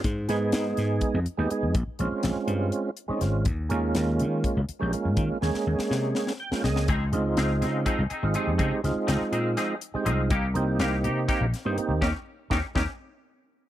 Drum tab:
HH |x-x-x-x-x-x-x-|x-x-x-x-x-x-x-|x-x-x-x-x-x-x-|x-------------|
SD |--o-o-o-------|----o-------o-|----o---------|--oo-oo-oo-ooo|
BD |o-------o-----|o-------------|o-------o-----|o-------------|

HH |x-x-x-x-x-x-x-|x-x-x-x-x-x-x-|x-x-x-x-x-x-x-|--------------|
SD |----o-o-------|--o-o---o-----|----o---o-o---|o---o-o-------|
BD |o-------o-----|o-------------|o-------o-----|o---o-o-------|